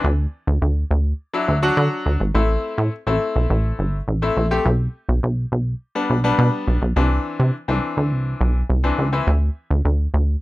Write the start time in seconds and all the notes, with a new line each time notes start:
0.04 D2
0.47 D2
0.62 D2
0.91 D2
1.33 F#3 D4 E4
1.48 D2
1.62 F#3 D4 F#4
1.77 D3
2.06 D2
2.20 G#1
2.34 A1 A3 C4 E4
2.78 A2
3.07 A1 A3 C4 E4
3.36 B1
3.50 A1
3.79 G1
4.08 A1
4.22 A3 C4 E4
4.37 A#1
4.51 A3 C4 G4
4.65 B1
5.09 B1
5.23 B1
5.52 B1
5.95 G3 B3 D4
6.10 B1
6.24 G3 B3 D4
6.38 B2
6.67 B1
6.82 B1
6.96 C2 E3 C4 D4
7.40 C3
7.68 C2 E3 C4 D4
7.97 D2
8.12 C2
8.41 B1
8.70 C2
8.84 E3 C4 D4
8.98 C#2
9.12 E3 C4 E4
9.27 D2
9.70 D2
9.85 D2
10.14 D2